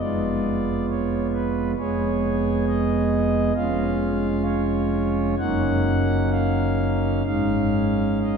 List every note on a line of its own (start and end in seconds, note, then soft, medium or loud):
0.00 1.74 F1 medium
0.00 1.74 F2 medium
0.00 1.74 G#3 medium
0.00 1.74 B3 medium
0.00 1.74 F4 medium
0.00 0.86 D5 loud
0.89 1.27 C#5 medium
1.33 1.72 B4 loud
1.78 3.52 F1 medium
1.78 3.52 F2 medium
1.78 3.52 G#3 medium
1.78 3.52 B3 medium
1.78 3.52 G#4 medium
1.78 2.65 C#5 loud
2.67 3.53 D#5 loud
3.55 5.35 F1 medium
3.55 5.35 F2 medium
3.55 5.34 G#3 medium
3.55 5.35 C#4 medium
3.55 5.35 F4 medium
3.55 4.42 F5 loud
4.43 5.35 C#5 loud
5.38 7.22 F#1 medium
5.38 7.22 F#2 medium
5.38 7.22 A#3 medium
5.38 7.22 C#4 medium
5.38 7.22 D#4 medium
5.38 6.30 F#5 loud
6.31 7.23 F5 loud
7.26 8.37 G#1 medium
7.26 8.37 G#2 medium
7.26 8.37 G#3 medium
7.26 8.37 C#4 medium
7.26 8.37 D#4 medium
7.26 8.19 F5 loud
8.22 8.37 D#5 medium